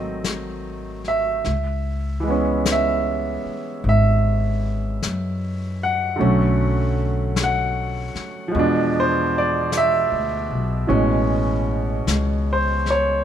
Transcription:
0.00 1.41 G#1 medium
0.00 1.44 D#3 medium
0.00 1.45 F#3 soft
0.00 1.45 A3 medium
0.00 1.45 C4 medium
0.00 1.03 D#5 medium
0.24 brush sweep soft
0.24 snare soft
0.24 hi-hat pedal soft
1.04 2.62 E5 medium
1.04 snare soft
1.44 3.40 C#2 medium
1.44 brush sweep soft
1.44 snare soft
2.20 6.17 E3 medium
2.20 6.19 G#3 soft
2.28 6.21 B3 soft
2.28 6.19 C#4 medium
2.66 brush sweep soft
2.66 snare medium
2.66 hi-hat pedal medium
2.72 3.45 E5 medium
3.45 muted upright bass stroke soft
3.83 4.98 G#1 medium
3.83 brush sweep soft
3.89 5.78 E5 medium
5.02 6.16 F#2 medium
5.02 brush sweep soft
5.02 snare soft
5.02 hi-hat pedal medium
5.83 7.34 F#5 medium
6.16 8.53 D3 soft
6.16 8.53 F#3 soft
6.16 8.54 A3 soft
6.16 brush sweep soft
6.21 8.11 B1 medium
6.21 8.55 C#4 medium
7.36 brush sweep soft
7.36 snare medium
7.36 hi-hat pedal medium
7.44 7.88 F#5 medium
8.15 muted upright bass stroke soft
8.15 snare soft
8.48 10.86 F3 medium
8.48 10.86 G#3 medium
8.54 10.07 E2 medium
8.54 10.87 B2 medium
8.54 brush sweep soft
8.59 10.92 D4 medium
9.00 9.35 C5 medium
9.38 9.74 D5 medium
9.72 brush sweep soft
9.72 snare soft
9.72 hi-hat pedal medium
9.77 10.88 E5 medium
10.12 10.48 D2 medium
10.51 10.87 B1 medium
10.87 12.03 A1 medium
10.87 13.24 B2 soft
10.87 13.24 E3 medium
10.87 13.24 G#3 soft
10.87 13.24 C#4 medium
10.87 brush sweep soft
12.07 13.21 C#2 medium
12.07 brush sweep soft
12.07 snare medium
12.07 hi-hat pedal medium
12.53 12.88 C5 medium
12.86 snare soft
12.90 13.24 C#5 medium

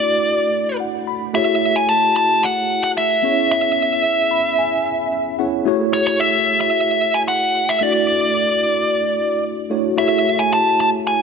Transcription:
0.00 1.30 A3 medium
0.00 1.30 D4 medium
0.00 1.31 E4 medium
0.00 1.31 F#4 medium
0.00 0.77 D5 medium
0.00 1.31 D5 medium
0.80 1.05 F#5 medium
1.07 1.33 B5 medium
1.33 3.19 A3 medium
1.33 3.20 E4 medium
1.33 3.20 F#4 medium
1.33 3.20 G#4 medium
1.33 3.20 C#5 medium
1.33 1.76 E5 medium
1.76 1.89 G#5 medium
1.89 2.15 A5 loud
2.16 2.44 A5 loud
2.43 2.83 F#5 medium
2.84 2.89 F#5 loud
2.98 3.50 E5 loud
3.22 5.35 B3 medium
3.22 5.35 C#4 medium
3.22 5.35 E4 medium
3.22 5.36 G#4 medium
3.22 5.36 C#5 medium
3.51 5.36 E5 medium
4.31 4.56 B5 medium
4.58 4.83 G#5 medium
4.85 5.10 E5 medium
5.12 5.37 E5 medium
5.38 5.66 B3 medium
5.38 5.66 C#4 medium
5.38 5.64 E4 medium
5.38 5.66 G#4 medium
5.38 5.66 C#5 medium
5.38 5.64 F#5 medium
5.65 7.77 A3 medium
5.65 7.78 E4 medium
5.65 7.78 F#4 medium
5.65 7.78 G#4 medium
5.65 7.79 C#5 medium
5.93 6.06 C#5 medium
6.07 6.20 C#5 medium
6.20 6.59 E5 medium
6.61 7.16 E5 medium
7.14 7.19 G#5 loud
7.28 7.70 F#5 loud
7.69 7.83 E5 medium
7.81 9.66 A3 medium
7.81 9.67 D4 medium
7.81 9.67 E4 medium
7.81 9.67 F#4 medium
7.81 9.44 D5 medium
7.81 9.68 D5 medium
9.70 9.95 A3 medium
9.70 9.97 D4 medium
9.70 9.96 E4 medium
9.70 9.97 F#4 medium
9.70 9.98 C#5 medium
9.96 11.22 A3 medium
9.96 11.22 E4 medium
9.96 11.22 F#4 medium
9.96 11.22 G#4 medium
9.96 11.22 C#5 medium
9.96 10.40 E5 medium
10.39 10.52 G#5 medium
10.53 10.79 A5 loud
10.80 10.88 A5 loud
11.07 11.22 G#5 loud

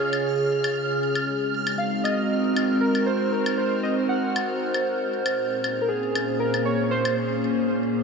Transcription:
0.00 1.03 C#3 medium
0.00 1.03 C#4 medium
0.00 1.03 F4 medium
0.00 0.72 G#4 medium
0.00 2.67 G#4 medium
0.00 1.03 C#5 medium
0.00 7.18 F6 medium
0.13 high woodblock soft
0.64 high woodblock medium
1.03 5.13 G#3 medium
1.15 6.41 D#4 medium
1.15 5.13 F#4 medium
1.15 high woodblock soft
1.35 6.62 C4 medium
1.49 8.03 C5 medium
1.64 6.19 A#4 medium
1.64 high woodblock medium
1.78 2.03 F5 medium
2.04 2.77 D#5 medium
2.04 high woodblock soft
2.56 high woodblock medium
2.81 3.08 A#4 medium
2.95 high woodblock soft
3.06 3.31 C5 medium
3.32 3.59 A#4 medium
3.46 high woodblock medium
3.57 3.85 C5 medium
3.83 3.95 D#5 medium
4.09 4.83 F#5 medium
4.36 high woodblock medium
4.74 high woodblock soft
5.13 8.03 A#2 medium
5.25 8.03 C#4 medium
5.25 8.03 G#4 medium
5.25 high woodblock medium
5.32 8.03 A#3 medium
5.64 high woodblock soft
5.81 5.89 A#4 medium
5.88 6.37 G#4 medium
6.15 high woodblock medium
6.40 6.64 A#4 medium
6.54 high woodblock soft
6.65 6.83 C#5 loud
6.84 6.92 C#5 medium
6.91 7.15 C5 loud
7.05 high woodblock medium

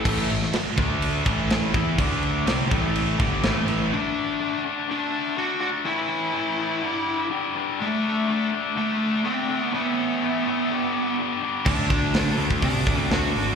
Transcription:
0.05 0.28 A1 medium
0.05 0.29 A2 medium
0.05 0.28 E3 loud
0.05 0.30 A3 loud
0.05 kick loud
0.05 crash loud
0.05 crash medium
0.29 0.52 A1 medium
0.29 0.49 A2 medium
0.29 0.49 E3 medium
0.29 crash medium
0.42 snare soft
0.53 muted overdriven electric guitar stroke medium
0.53 muted picked electric bass stroke soft
0.53 muted distorted electric guitar stroke medium
0.53 snare loud
0.53 crash medium
0.77 1.23 D2 medium
0.77 1.25 D3 medium
0.77 1.26 A3 loud
0.77 1.26 D4 loud
0.77 kick loud
0.77 crash medium
1.02 crash loud
1.26 1.71 A1 medium
1.26 1.73 A2 medium
1.26 1.72 E3 loud
1.26 1.74 A3 loud
1.26 kick loud
1.26 crash medium
1.50 snare loud
1.50 crash medium
1.73 1.97 E2 loud
1.73 1.97 E3 loud
1.73 1.98 B3 loud
1.73 1.98 E4 loud
1.73 kick loud
1.73 crash medium
1.98 2.44 D2 loud
1.98 2.45 D3 medium
1.98 2.46 A3 loud
1.98 2.47 D4 loud
1.98 kick loud
1.98 crash loud
2.23 crash medium
2.46 2.69 C2 medium
2.46 2.70 C3 medium
2.46 2.71 G3 loud
2.46 2.71 C4 loud
2.46 snare loud
2.46 crash medium
2.70 3.16 A1 loud
2.70 3.19 A2 medium
2.70 3.19 E3 medium
2.70 3.19 A3 loud
2.70 kick loud
2.70 crash medium
2.95 crash medium
3.19 3.42 G1 medium
3.19 3.43 G2 medium
3.19 3.42 D3 medium
3.19 3.43 G3 loud
3.19 kick loud
3.19 crash medium
3.42 3.89 A1 loud
3.42 3.91 A2 medium
3.42 3.91 E3 loud
3.42 3.92 A3 loud
3.42 snare loud
3.42 crash medium
3.68 crash medium
3.92 4.39 D3 medium
3.92 4.39 A3 loud
3.92 4.62 D4 medium
3.92 4.41 D4 loud
4.40 4.63 D3 medium
4.40 4.64 A3 medium
4.40 4.65 D4 medium
4.64 4.87 D3 medium
4.64 4.88 A3 medium
4.64 4.89 D4 medium
4.88 5.36 D3 loud
4.88 5.36 A3 medium
4.88 5.37 D4 loud
4.88 5.38 D4 medium
5.37 5.59 D3 medium
5.37 5.60 A3 medium
5.37 5.60 D4 loud
5.37 5.60 F#4 loud
5.60 5.84 D3 loud
5.60 5.84 A3 loud
5.60 5.85 D4 loud
5.60 5.68 F#4 loud
5.85 6.32 A2 loud
5.85 6.32 E3 loud
5.85 6.33 A3 loud
5.85 7.27 E4 medium
6.33 6.56 A2 medium
6.33 6.57 E3 loud
6.33 6.58 A3 medium
6.58 6.81 A2 medium
6.58 6.81 E3 loud
6.58 6.82 A3 loud
6.82 7.29 G2 loud
6.82 7.30 D3 loud
6.82 7.30 G3 loud
7.30 7.53 G2 medium
7.30 7.54 D3 loud
7.30 7.55 G3 loud
7.54 7.78 G2 loud
7.54 7.77 D3 loud
7.54 7.79 G3 loud
7.78 8.26 D3 loud
7.78 8.28 A3 loud
7.78 8.49 A3 loud
7.78 8.28 D4 loud
8.28 8.50 D3 medium
8.28 8.51 A3 medium
8.28 8.52 D4 loud
8.51 8.74 D3 medium
8.51 8.75 A3 medium
8.51 8.76 D4 loud
8.76 9.23 D3 loud
8.76 9.24 A3 loud
8.76 9.25 D4 loud
9.25 9.48 D3 medium
9.25 9.48 A3 loud
9.25 9.62 C4 loud
9.25 9.49 D4 loud
9.49 9.72 D3 loud
9.49 9.72 A3 loud
9.49 9.72 D4 loud
9.62 9.74 B3 loud
9.72 10.21 A2 loud
9.72 10.21 E3 loud
9.72 10.22 A3 loud
9.72 11.15 B3 medium
10.22 10.44 A2 medium
10.22 10.45 E3 loud
10.22 10.46 A3 loud
10.46 10.69 A2 medium
10.46 10.69 E3 medium
10.46 10.69 A3 medium
10.70 11.17 G2 loud
10.70 11.18 D3 loud
10.70 11.19 G3 loud
11.18 11.41 G2 loud
11.18 11.42 D3 loud
11.18 11.42 G3 medium
11.42 11.65 G2 medium
11.42 11.65 D3 loud
11.42 11.66 G3 loud
11.65 11.87 D2 medium
11.65 12.13 D3 loud
11.65 12.14 A3 loud
11.65 12.35 D4 loud
11.65 12.15 D4 loud
11.65 kick loud
11.65 crash loud
11.90 12.11 D2 medium
11.90 kick medium
11.90 open hi-hat medium
12.14 12.35 D2 medium
12.14 12.37 D3 loud
12.14 12.38 A3 medium
12.14 12.38 D4 loud
12.14 snare loud
12.14 open hi-hat medium
12.38 12.59 D2 loud
12.38 12.62 D3 medium
12.38 12.62 A3 medium
12.38 12.62 D4 loud
12.38 open hi-hat medium
12.50 kick medium
12.62 12.84 C3 medium
12.62 13.11 D3 loud
12.62 13.11 A3 medium
12.62 13.12 D4 loud
12.62 13.09 D4 medium
12.62 kick loud
12.62 open hi-hat loud
12.86 13.08 D2 loud
12.86 kick loud
12.86 open hi-hat medium
13.11 13.32 D2 medium
13.11 13.34 D3 medium
13.11 13.35 A3 medium
13.11 13.36 D4 loud
13.11 13.55 F#4 loud
13.11 snare loud
13.11 open hi-hat medium
13.36 13.55 G#1 loud
13.36 13.55 D3 loud
13.36 13.55 A3 loud
13.36 13.55 D4 loud
13.36 open hi-hat medium

